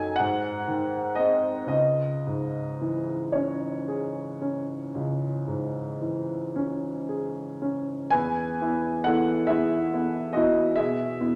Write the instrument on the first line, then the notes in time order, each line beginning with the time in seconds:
grand piano
Already playing: F#2 D#3 D#4 A4 G#5 A5
0.16 G#2 F#5
0.68 D#3
1.15 C4 G#4 D#5
1.67 C#2 D#5
2.27 G#2
2.81 E3
3.32 C#4 C#5
3.88 G#4
4.41 C#4
4.95 C#2
5.47 G#2
6.01 E3
6.56 C#4
7.09 G#4
7.62 C#4
8.10 E2 B4 G#5
8.61 B3 E4
9.04 E3 B3 A4 F#5
9.08 E4
9.47 E3 B3 E4 G#4 E5
9.93 B3 E4
10.33 E3 B3 E4 F#4 D#5
10.76 B2 G#4 E5
11.20 B3 E4